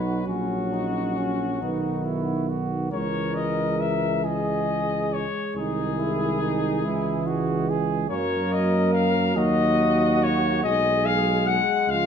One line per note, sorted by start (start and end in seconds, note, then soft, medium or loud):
0.00 0.22 B1 soft
0.00 1.57 F#3 soft
0.00 0.22 D#4 soft
0.00 0.23 F#4 soft
0.00 0.27 B4 soft
0.26 1.59 A#1 soft
0.26 1.58 C#4 soft
0.26 0.74 C#4 soft
0.26 2.46 F#4 medium
0.73 1.19 D#4 soft
1.17 1.63 C#4 soft
1.61 2.90 B1 soft
1.61 2.91 D#3 soft
1.61 2.93 B3 soft
1.61 2.07 D#4 soft
2.05 2.51 E4 soft
2.49 2.91 F#4 soft
2.92 5.24 C#2 soft
2.92 5.25 E3 soft
2.92 8.06 G#3 soft
2.92 4.25 A#4 soft
2.92 3.36 C#5 medium
3.35 3.82 D#5 medium
3.80 4.24 E5 medium
4.24 5.28 G#4 soft
4.24 5.15 D#5 medium
5.13 5.56 C#5 medium
5.55 6.87 C2 soft
5.55 6.86 D#3 soft
5.55 6.01 D#4 soft
5.55 7.65 G#4 medium
5.99 6.43 E4 medium
6.42 6.86 D#4 soft
6.84 8.10 C#2 medium
6.84 8.09 E3 medium
6.84 7.28 E4 soft
7.27 7.71 F#4 medium
7.69 8.10 G#4 medium
8.09 9.38 F#2 medium
8.09 11.59 F#3 medium
8.09 10.64 A#3 medium
8.09 9.38 A#4 medium
8.09 8.54 C#5 medium
8.52 8.92 D#5 medium
8.93 9.35 F5 medium
9.36 10.64 D#2 medium
9.36 10.65 F#4 medium
9.36 10.25 D#5 medium
10.23 10.63 C#5 medium
10.63 11.61 B1 medium
10.63 12.06 G#3 medium
10.63 11.62 G#4 medium
10.63 11.07 D#5 medium
11.06 11.48 F5 medium
11.47 11.91 F#5 medium
11.88 12.06 C#2 medium
11.88 12.06 F3 medium
11.88 12.06 F4 medium
11.88 12.06 F5 medium